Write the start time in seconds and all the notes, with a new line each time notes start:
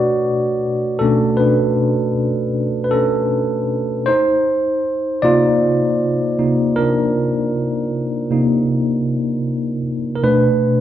Already playing: B2 A3 F#4 C#5 D5
0.99 B2 A3 C#4 D4 A4
1.37 D4 B4
2.84 B4
2.91 C#4 A4
4.06 D#4 C5
5.22 C3 A#3 D#4 F4 D5
6.38 C3 A#3 D#4
6.76 D4 A#4
8.30 C3 A#3 D#4
10.15 A#4
10.23 B2 A3 D4 B4